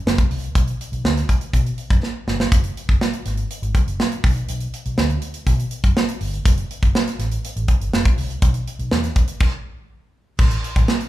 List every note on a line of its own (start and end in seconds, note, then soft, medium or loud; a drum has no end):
0.06 0.23 F#1 loud
0.06 snare loud
0.18 kick loud
0.18 closed hi-hat medium
0.31 0.48 C2 loud
0.31 open hi-hat medium
0.44 closed hi-hat medium
0.55 0.73 B1 medium
0.55 kick loud
0.55 closed hi-hat loud
0.67 closed hi-hat medium
0.81 closed hi-hat medium
0.92 1.01 B1 medium
0.92 closed hi-hat soft
1.04 1.22 D2 loud
1.04 snare loud
1.17 snare soft
1.17 closed hi-hat soft
1.29 kick medium
1.29 closed hi-hat medium
1.41 closed hi-hat medium
1.53 1.71 B2 medium
1.53 kick medium
1.53 closed hi-hat loud
1.66 closed hi-hat medium
1.78 closed hi-hat medium
1.90 1.99 F#2 medium
1.90 kick loud
1.90 closed hi-hat medium
2.03 snare medium
2.27 2.45 G1 medium
2.27 snare medium
2.40 snare medium
2.52 2.69 F#1 loud
2.52 kick loud
2.52 closed hi-hat loud
2.64 closed hi-hat medium
2.77 closed hi-hat medium
2.89 2.97 F#1 loud
2.89 kick medium
2.89 closed hi-hat soft
3.01 snare loud
3.13 closed hi-hat medium
3.25 3.43 G#1 medium
3.25 snare soft
3.25 closed hi-hat medium
3.37 closed hi-hat medium
3.50 closed hi-hat medium
3.62 3.71 G#1 medium
3.62 closed hi-hat medium
3.74 kick medium
3.74 closed hi-hat medium
3.87 3.96 F#1 medium
3.87 closed hi-hat medium
4.00 snare loud
4.12 closed hi-hat medium
4.24 4.41 B1 loud
4.24 kick loud
4.24 open hi-hat medium
4.37 closed hi-hat soft
4.48 4.66 B1 medium
4.48 closed hi-hat loud
4.60 closed hi-hat medium
4.73 closed hi-hat medium
4.85 4.94 B1 medium
4.85 closed hi-hat medium
4.98 5.15 D2 loud
4.98 snare loud
5.10 closed hi-hat medium
5.22 closed hi-hat medium
5.34 closed hi-hat medium
5.47 5.64 B2 medium
5.47 kick medium
5.47 closed hi-hat medium
5.59 closed hi-hat medium
5.71 closed hi-hat medium
5.84 5.92 F#2 medium
5.84 kick loud
5.84 closed hi-hat medium
5.97 snare loud
6.08 closed hi-hat medium
6.21 6.38 G1 medium
6.21 open hi-hat medium
6.33 closed hi-hat soft
6.45 6.63 F#1 loud
6.45 kick loud
6.45 closed hi-hat loud
6.57 closed hi-hat medium
6.71 closed hi-hat medium
6.83 6.91 F#1 loud
6.83 kick medium
6.83 closed hi-hat medium
6.95 snare loud
7.07 snare soft
7.07 closed hi-hat medium
7.19 7.37 A1 medium
7.19 snare soft
7.19 closed hi-hat medium
7.31 closed hi-hat medium
7.44 closed hi-hat loud
7.56 7.65 A1 medium
7.56 closed hi-hat medium
7.68 kick medium
7.68 closed hi-hat medium
7.81 7.90 G1 medium
7.81 closed hi-hat medium
7.93 8.10 F#1 loud
7.93 snare loud
8.05 kick loud
8.05 closed hi-hat medium
8.18 8.35 C2 medium
8.18 open hi-hat medium
8.30 closed hi-hat soft
8.42 8.60 B1 loud
8.42 kick loud
8.42 closed hi-hat loud
8.54 closed hi-hat medium
8.67 closed hi-hat medium
8.79 8.88 B1 loud
8.79 closed hi-hat soft
8.91 9.09 E2 loud
8.91 snare loud
9.04 snare soft
9.04 closed hi-hat soft
9.16 kick medium
9.16 closed hi-hat medium
9.27 closed hi-hat medium
9.40 kick loud
9.40 crash medium
10.39 10.56 A1 loud
10.39 kick loud
10.39 crash loud
10.50 closed hi-hat medium
10.64 closed hi-hat medium
10.76 10.85 A1 loud
10.76 kick medium
10.76 closed hi-hat medium
10.88 snare loud
11.00 closed hi-hat soft